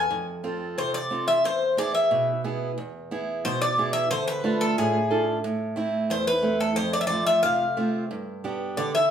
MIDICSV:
0, 0, Header, 1, 3, 480
1, 0, Start_track
1, 0, Tempo, 666667
1, 74, Time_signature, 2, 2, 24, 8
1, 6556, End_track
2, 0, Start_track
2, 0, Title_t, "Bouzouki"
2, 0, Program_c, 0, 25
2, 0, Note_on_c, 0, 80, 76
2, 182, Note_off_c, 0, 80, 0
2, 564, Note_on_c, 0, 72, 76
2, 672, Note_off_c, 0, 72, 0
2, 679, Note_on_c, 0, 74, 85
2, 901, Note_off_c, 0, 74, 0
2, 919, Note_on_c, 0, 76, 84
2, 1030, Note_off_c, 0, 76, 0
2, 1047, Note_on_c, 0, 72, 78
2, 1281, Note_off_c, 0, 72, 0
2, 1284, Note_on_c, 0, 74, 80
2, 1393, Note_off_c, 0, 74, 0
2, 1400, Note_on_c, 0, 76, 75
2, 1734, Note_off_c, 0, 76, 0
2, 2483, Note_on_c, 0, 72, 84
2, 2593, Note_off_c, 0, 72, 0
2, 2603, Note_on_c, 0, 74, 87
2, 2827, Note_off_c, 0, 74, 0
2, 2830, Note_on_c, 0, 76, 94
2, 2954, Note_off_c, 0, 76, 0
2, 2957, Note_on_c, 0, 72, 87
2, 3076, Note_off_c, 0, 72, 0
2, 3079, Note_on_c, 0, 71, 87
2, 3318, Note_on_c, 0, 69, 81
2, 3326, Note_off_c, 0, 71, 0
2, 3440, Note_off_c, 0, 69, 0
2, 3443, Note_on_c, 0, 68, 65
2, 3776, Note_off_c, 0, 68, 0
2, 4399, Note_on_c, 0, 72, 78
2, 4510, Note_off_c, 0, 72, 0
2, 4517, Note_on_c, 0, 71, 79
2, 4741, Note_off_c, 0, 71, 0
2, 4755, Note_on_c, 0, 69, 71
2, 4867, Note_on_c, 0, 72, 87
2, 4868, Note_off_c, 0, 69, 0
2, 4984, Note_off_c, 0, 72, 0
2, 4992, Note_on_c, 0, 74, 81
2, 5043, Note_off_c, 0, 74, 0
2, 5046, Note_on_c, 0, 76, 72
2, 5087, Note_off_c, 0, 76, 0
2, 5090, Note_on_c, 0, 74, 81
2, 5221, Note_off_c, 0, 74, 0
2, 5231, Note_on_c, 0, 76, 89
2, 5345, Note_off_c, 0, 76, 0
2, 5348, Note_on_c, 0, 77, 85
2, 5686, Note_off_c, 0, 77, 0
2, 6316, Note_on_c, 0, 74, 72
2, 6438, Note_off_c, 0, 74, 0
2, 6442, Note_on_c, 0, 76, 88
2, 6556, Note_off_c, 0, 76, 0
2, 6556, End_track
3, 0, Start_track
3, 0, Title_t, "Steel-string acoustic guitar"
3, 0, Program_c, 1, 25
3, 76, Note_on_c, 1, 41, 62
3, 315, Note_on_c, 1, 60, 48
3, 317, Note_on_c, 1, 65, 47
3, 323, Note_on_c, 1, 69, 48
3, 542, Note_off_c, 1, 41, 0
3, 559, Note_on_c, 1, 48, 58
3, 700, Note_off_c, 1, 60, 0
3, 702, Note_off_c, 1, 69, 0
3, 703, Note_off_c, 1, 65, 0
3, 796, Note_on_c, 1, 60, 44
3, 800, Note_on_c, 1, 65, 42
3, 806, Note_on_c, 1, 69, 49
3, 989, Note_off_c, 1, 60, 0
3, 992, Note_off_c, 1, 65, 0
3, 993, Note_off_c, 1, 69, 0
3, 1024, Note_off_c, 1, 48, 0
3, 1038, Note_on_c, 1, 40, 62
3, 1276, Note_on_c, 1, 59, 42
3, 1282, Note_on_c, 1, 64, 33
3, 1285, Note_on_c, 1, 68, 51
3, 1504, Note_off_c, 1, 40, 0
3, 1519, Note_on_c, 1, 47, 61
3, 1662, Note_off_c, 1, 59, 0
3, 1663, Note_off_c, 1, 64, 0
3, 1667, Note_off_c, 1, 68, 0
3, 1759, Note_on_c, 1, 59, 46
3, 1762, Note_on_c, 1, 64, 36
3, 1765, Note_on_c, 1, 68, 47
3, 1951, Note_off_c, 1, 59, 0
3, 1953, Note_off_c, 1, 64, 0
3, 1955, Note_off_c, 1, 68, 0
3, 1985, Note_off_c, 1, 47, 0
3, 1999, Note_on_c, 1, 40, 64
3, 2241, Note_on_c, 1, 59, 49
3, 2245, Note_on_c, 1, 64, 36
3, 2247, Note_on_c, 1, 68, 53
3, 2465, Note_off_c, 1, 40, 0
3, 2486, Note_on_c, 1, 47, 67
3, 2625, Note_off_c, 1, 59, 0
3, 2625, Note_off_c, 1, 64, 0
3, 2628, Note_off_c, 1, 68, 0
3, 2723, Note_on_c, 1, 59, 42
3, 2729, Note_on_c, 1, 64, 36
3, 2729, Note_on_c, 1, 68, 51
3, 2915, Note_off_c, 1, 59, 0
3, 2915, Note_off_c, 1, 64, 0
3, 2917, Note_off_c, 1, 68, 0
3, 2949, Note_off_c, 1, 47, 0
3, 2959, Note_on_c, 1, 50, 61
3, 3194, Note_on_c, 1, 62, 50
3, 3198, Note_on_c, 1, 65, 46
3, 3201, Note_on_c, 1, 57, 52
3, 3425, Note_off_c, 1, 50, 0
3, 3444, Note_on_c, 1, 45, 69
3, 3580, Note_off_c, 1, 62, 0
3, 3583, Note_off_c, 1, 65, 0
3, 3584, Note_off_c, 1, 57, 0
3, 3676, Note_on_c, 1, 69, 49
3, 3680, Note_on_c, 1, 65, 41
3, 3682, Note_on_c, 1, 62, 40
3, 3869, Note_off_c, 1, 62, 0
3, 3870, Note_off_c, 1, 65, 0
3, 3871, Note_off_c, 1, 69, 0
3, 3907, Note_off_c, 1, 45, 0
3, 3918, Note_on_c, 1, 45, 66
3, 4147, Note_on_c, 1, 57, 51
3, 4152, Note_on_c, 1, 60, 44
3, 4156, Note_on_c, 1, 64, 51
3, 4384, Note_off_c, 1, 45, 0
3, 4393, Note_on_c, 1, 40, 72
3, 4535, Note_off_c, 1, 57, 0
3, 4539, Note_off_c, 1, 60, 0
3, 4541, Note_off_c, 1, 64, 0
3, 4626, Note_on_c, 1, 57, 48
3, 4631, Note_on_c, 1, 60, 44
3, 4636, Note_on_c, 1, 64, 44
3, 4823, Note_off_c, 1, 57, 0
3, 4826, Note_off_c, 1, 60, 0
3, 4827, Note_off_c, 1, 64, 0
3, 4861, Note_off_c, 1, 40, 0
3, 4878, Note_on_c, 1, 41, 64
3, 5114, Note_on_c, 1, 57, 48
3, 5118, Note_on_c, 1, 60, 39
3, 5120, Note_on_c, 1, 65, 52
3, 5343, Note_off_c, 1, 41, 0
3, 5358, Note_on_c, 1, 48, 64
3, 5499, Note_off_c, 1, 57, 0
3, 5500, Note_off_c, 1, 60, 0
3, 5502, Note_off_c, 1, 65, 0
3, 5594, Note_on_c, 1, 57, 45
3, 5596, Note_on_c, 1, 60, 41
3, 5602, Note_on_c, 1, 65, 42
3, 5786, Note_off_c, 1, 57, 0
3, 5788, Note_off_c, 1, 60, 0
3, 5789, Note_off_c, 1, 65, 0
3, 5822, Note_off_c, 1, 48, 0
3, 5837, Note_on_c, 1, 43, 61
3, 6077, Note_on_c, 1, 59, 51
3, 6081, Note_on_c, 1, 62, 37
3, 6082, Note_on_c, 1, 67, 55
3, 6301, Note_off_c, 1, 43, 0
3, 6320, Note_on_c, 1, 50, 65
3, 6459, Note_off_c, 1, 59, 0
3, 6460, Note_off_c, 1, 62, 0
3, 6462, Note_off_c, 1, 67, 0
3, 6556, Note_off_c, 1, 50, 0
3, 6556, End_track
0, 0, End_of_file